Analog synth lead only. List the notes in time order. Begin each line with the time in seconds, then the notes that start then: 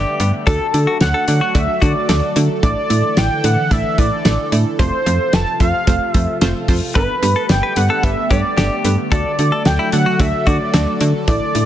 Already playing: D5
0.47 A4
1.02 F#5
1.28 F#5
1.55 E5
1.82 D5
2.63 D5
3.17 G5
3.44 F#5
3.71 E5
3.98 D5
4.79 C5
5.33 A5
5.60 F5
6.13 E5
6.95 B4
7.49 G5
7.77 F#5
8.04 E5
8.31 D5
9.12 D5
9.66 G5
9.93 F#5
10.20 E5
10.47 D5
11.28 D5